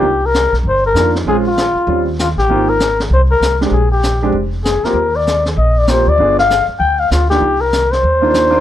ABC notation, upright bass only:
X:1
M:4/4
L:1/8
Q:"Swing" 1/4=195
K:Cm
V:1 name="Upright bass" clef=bass
C,,3 =B,,, G,,,2 F,,2 | B,,,3 z E,,3 =A,,, | A,,,4 C,,2 C,,2 | B,,,4 F,,,3 z |
E,,4 B,,,3 D,, | G,,,3 z D,,2 D,,2 | C,,4 E,,4 |]